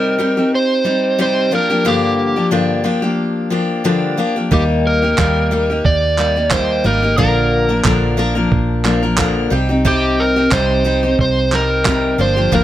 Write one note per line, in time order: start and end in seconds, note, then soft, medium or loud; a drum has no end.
0.00 0.18 C3 medium
0.00 0.17 G3 medium
0.00 0.18 C4 medium
0.00 0.19 D#4 medium
0.00 0.19 G4 medium
0.00 0.55 A#4 medium
0.19 0.37 G3 medium
0.19 0.37 C4 medium
0.19 0.36 D#4 medium
0.19 0.36 G4 medium
0.37 0.84 C4 soft
0.37 0.85 D#4 soft
0.37 0.85 G4 soft
0.55 1.21 C5 medium
0.84 1.18 G3 medium
0.84 1.18 C4 medium
0.84 1.18 D#4 medium
0.84 1.19 G4 medium
1.18 1.52 C3 medium
1.18 1.51 G3 medium
1.18 1.52 C4 medium
1.18 1.52 D#4 medium
1.18 1.52 G4 medium
1.18 1.54 C5 medium
1.51 1.70 F3 medium
1.51 1.70 A#3 medium
1.51 1.69 D4 medium
1.51 1.69 G4 medium
1.51 1.88 A#4 medium
1.70 1.84 F3 soft
1.70 1.84 A#3 soft
1.70 1.85 D4 soft
1.70 1.85 G4 medium
1.85 2.37 G2 medium
1.85 2.37 D3 medium
1.85 2.37 F3 medium
1.85 2.36 A#3 medium
1.85 2.36 D4 medium
1.85 2.35 G4 medium
1.85 2.49 G4 medium
2.36 2.50 F3 soft
2.36 2.51 A#3 soft
2.36 2.51 D4 soft
2.36 2.51 G4 soft
2.51 2.85 G2 medium
2.51 2.85 D3 medium
2.51 2.83 F3 medium
2.51 2.83 A#3 medium
2.51 2.84 D4 medium
2.51 2.84 G4 medium
2.84 3.03 F3 medium
2.84 3.02 A#3 medium
2.84 3.02 D4 medium
2.84 3.01 G4 medium
3.02 3.49 F3 soft
3.02 3.50 A#3 soft
3.02 3.50 D4 soft
3.02 3.51 G4 medium
3.50 3.84 F3 medium
3.50 3.84 A#3 medium
3.50 3.84 D4 medium
3.50 3.84 G4 medium
3.84 4.18 G2 medium
3.84 4.18 D3 medium
3.84 4.16 F3 medium
3.84 4.17 A#3 medium
3.84 4.18 D4 medium
3.84 4.18 G4 medium
4.17 4.36 F3 medium
4.17 4.36 A#3 medium
4.17 4.36 D4 medium
4.17 4.35 G4 medium
4.36 4.51 F3 soft
4.36 4.51 A#3 soft
4.36 4.52 D4 soft
4.36 4.51 G4 medium
4.51 5.14 D#2 medium
4.51 5.03 D#3 medium
4.51 5.03 G3 medium
4.51 5.03 A#3 medium
4.51 5.02 D#4 medium
4.51 5.01 G4 medium
4.51 4.62 G4 medium
4.51 kick loud
4.87 5.89 A#4 medium
5.02 5.17 A#3 soft
5.02 5.17 D#4 soft
5.02 5.18 G4 soft
5.17 5.81 D#2 medium
5.17 5.51 D#3 medium
5.17 5.50 G3 medium
5.17 5.51 A#3 medium
5.17 5.51 D#4 medium
5.17 5.52 G4 medium
5.17 kick medium
5.17 clap medium
5.51 5.70 G3 medium
5.51 5.70 A#3 medium
5.51 5.70 D#4 medium
5.51 5.68 G4 medium
5.70 6.17 A#3 soft
5.70 6.18 D#4 soft
5.70 6.18 G4 soft
5.85 6.81 D#2 medium
5.85 6.54 D5 medium
5.85 kick loud
6.17 6.36 G3 medium
6.17 6.37 A#3 medium
6.17 6.36 D#4 medium
6.17 6.35 G4 medium
6.17 clap medium
6.36 6.50 A#3 soft
6.36 6.51 D#4 soft
6.36 6.51 G4 soft
6.51 6.84 D#3 medium
6.51 6.83 G3 medium
6.51 6.84 A#3 medium
6.51 6.84 D#4 medium
6.51 6.85 G4 medium
6.51 6.86 C5 medium
6.51 kick loud
6.51 clap loud
6.84 7.16 G#1 medium
6.84 7.03 G3 medium
6.84 7.03 A#3 medium
6.84 7.02 D#4 medium
6.84 7.01 G4 medium
6.84 7.17 A#4 medium
7.02 7.17 A#3 soft
7.02 7.18 D#4 soft
7.02 7.18 G4 soft
7.17 7.81 A#1 medium
7.17 7.70 A#2 medium
7.17 7.70 D3 medium
7.17 7.70 F3 medium
7.17 7.69 A#3 medium
7.17 7.69 D4 medium
7.17 7.68 A#4 medium
7.17 7.81 A#4 medium
7.17 kick loud
7.69 7.83 F3 soft
7.69 7.84 A#3 soft
7.69 7.84 D4 soft
7.69 7.84 A#4 medium
7.84 8.48 A#1 medium
7.84 8.18 A#2 medium
7.84 8.18 D3 medium
7.84 8.16 F3 medium
7.84 8.16 A#3 medium
7.84 8.17 D4 medium
7.84 8.18 A#4 medium
7.84 kick loud
7.84 clap medium
8.17 8.36 F3 medium
8.17 8.35 A#3 medium
8.17 8.35 D4 medium
8.17 8.34 A#4 medium
8.35 8.83 F3 soft
8.35 8.84 A#3 soft
8.35 8.84 D4 soft
8.35 8.84 A#4 soft
8.52 9.48 A#1 medium
8.52 kick loud
8.84 9.03 F3 medium
8.84 9.03 A#3 medium
8.84 9.02 D4 medium
8.84 9.01 A#4 medium
8.84 clap medium
9.03 9.16 F3 soft
9.03 9.17 A#3 soft
9.03 9.17 D4 soft
9.03 9.17 A#4 soft
9.17 9.51 A#2 medium
9.17 9.51 D3 medium
9.17 9.50 F3 medium
9.17 9.51 A#3 medium
9.17 9.51 D4 medium
9.17 9.52 A#4 medium
9.17 kick loud
9.17 clap loud
9.50 10.48 C2 medium
9.50 9.69 G3 medium
9.50 9.70 C4 medium
9.50 9.69 D#4 medium
9.50 9.68 G4 medium
9.69 9.84 C4 soft
9.69 9.84 D#4 soft
9.69 9.85 G4 soft
9.85 10.37 C3 medium
9.85 10.37 G3 medium
9.85 10.37 C4 medium
9.85 10.36 D#4 medium
9.85 10.35 G4 medium
9.85 10.21 G4 medium
9.85 kick loud
10.20 10.54 A#4 medium
10.36 10.51 C4 soft
10.36 10.51 D#4 soft
10.36 10.52 G4 soft
10.51 11.15 C2 medium
10.51 10.85 C3 medium
10.51 10.83 G3 medium
10.51 10.84 C4 medium
10.51 10.84 D#4 medium
10.51 10.85 G4 medium
10.51 11.20 C5 medium
10.51 kick medium
10.51 clap medium
10.84 11.03 G3 medium
10.84 11.03 C4 medium
10.84 11.03 D#4 medium
10.84 11.02 G4 medium
11.03 11.51 C4 soft
11.03 11.51 D#4 soft
11.03 11.52 G4 soft
11.19 12.15 C2 medium
11.19 11.54 C5 loud
11.19 kick loud
11.51 11.84 G3 medium
11.51 11.85 C4 medium
11.51 11.85 D#4 medium
11.51 11.85 G4 medium
11.51 12.22 A#4 medium
11.51 clap medium
11.85 12.19 C3 medium
11.85 12.18 G3 medium
11.85 12.18 C4 medium
11.85 12.19 D#4 medium
11.85 12.19 G4 medium
11.85 kick loud
11.85 clap loud
12.18 12.50 G1 medium
12.18 12.37 F3 medium
12.18 12.36 A#3 medium
12.18 12.36 D4 medium
12.18 12.35 G4 medium
12.18 12.54 C5 medium
12.36 12.51 F3 soft
12.36 12.51 A#3 soft
12.36 12.52 D4 soft
12.36 12.52 G4 soft
12.52 12.64 G1 medium
12.52 12.64 G2 medium
12.52 12.64 D3 medium
12.52 12.64 F3 medium
12.52 12.64 A#3 medium
12.52 12.64 D4 medium
12.52 12.64 G4 medium
12.52 12.64 A#4 medium
12.52 kick loud